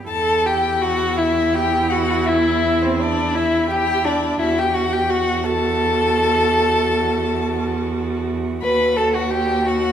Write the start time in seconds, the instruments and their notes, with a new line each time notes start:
0.08 cello E2, viola E4, violin A4 A5
0.46 violin G4 G5
0.82 violin F#4 F#5
1.18 violin E4 E5
1.54 violin G4 G5
1.90 violin F#4 F#5
2.26 violin E4 E5
2.82 violin C4 C5
3.00 violin D4 D5
3.35 violin E4 E5
3.70 violin G4 G5
4.05 violin D4 D5
4.39 cello E2, violin E4 E5, viola F#4
4.58 violin G4 G5
4.74 violin F#4 F#5
4.93 violin G4 G5
5.10 violin F#4 F#5
5.44 violin A4 A5
8.61 cello D#2, viola F#4, violin B4 B5
8.97 violin A4 A5
9.14 violin F#4 F#5
9.30 violin G4 G5
9.66 violin F#4 F#5